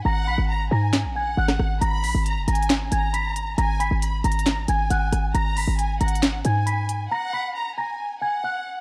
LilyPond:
<<
  \new Staff \with { instrumentName = "Celesta" } { \time 4/4 \key gis \minor \tempo 4 = 136 <ais'' ais'''>8 <b'' b'''>4 <ais'' ais'''>4 <gis'' gis'''>8 <fis'' fis'''>4 | <ais'' ais'''>8 <b'' b'''>4 <ais'' ais'''>4 <gis'' gis'''>8 <b'' b'''>8 r8 | <ais'' ais'''>8 <b'' b'''>4 <ais'' ais'''>4 <gis'' gis'''>8 <fis'' fis'''>4 | <ais'' ais'''>8 <b'' b'''>4 <ais'' ais'''>4 <gis'' gis'''>8 <b'' b'''>8 r8 |
<ais'' ais'''>8 <b'' b'''>4 <ais'' ais'''>4 <gis'' gis'''>8 <fis'' fis'''>4 | }
  \new Staff \with { instrumentName = "Violin section" } { \time 4/4 \key gis \minor fis''4 ais''8 gis''4 fis''4. | b''4 ais''8 gis''4 ais''4. | gis''4 b''8 ais''4 gis''4. | ais''4 gis''8 fis''4 gis''4. |
fis''4 ais''8 gis''4 fis''4. | }
  \new Staff \with { instrumentName = "808-style bass" } { \clef bass \time 4/4 \key gis \minor gis,,8 ais,,16 gis,,8. gis,8. ais,,8. gis,,8 gis,,8 | gis,,8 ais,,16 gis,,8 fis,,16 gis,,4 gis,,4. | gis,,8. gis,,8. gis,,4 gis,,8 gis,,8 gis,,8 | gis,,8. gis,,8. gis,,4 gis,4. |
r1 | }
  \new DrumStaff \with { instrumentName = "Drums" } \drummode { \time 4/4 r4 r4 <hc sn>4 r16 <ss sn>16 ss8 | hh8 hho8 \tuplet 3/2 { hh16 r16 r16 hh16 hh16 hh16 } <hc hh sn>8 hh8 hh8 hh8 | hh8 hh8 \tuplet 3/2 { hh16 r16 r16 hh16 hh16 hh16 } <hc hh sn>8 hh8 hh8 <hh ss>8 | hh8 hho8 \tuplet 3/2 { hh16 r16 r16 hh16 hh16 hh16 } <hc hh sn>8 hh8 hh8 hh8 |
r4 r4 r4 r4 | }
>>